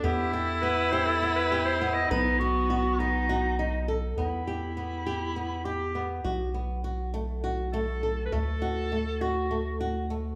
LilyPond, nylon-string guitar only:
\new Staff \with { instrumentName = "Nylon-string guitar" } { \time 7/8 \key e \minor \tempo 4 = 101 b8 g'8 b8 g'8 b8 g'8 b8 | b'8 b8 fis'8 b8 fis'8 dis'8 a'8 | b8 g'8 b8 g'8 b8 g'8 b8 | fis'8 b8 fis'8 a8 fis'8 a8 a'8 |
a8 fis'8 a8 fis'8 a8 fis'8 a8 | }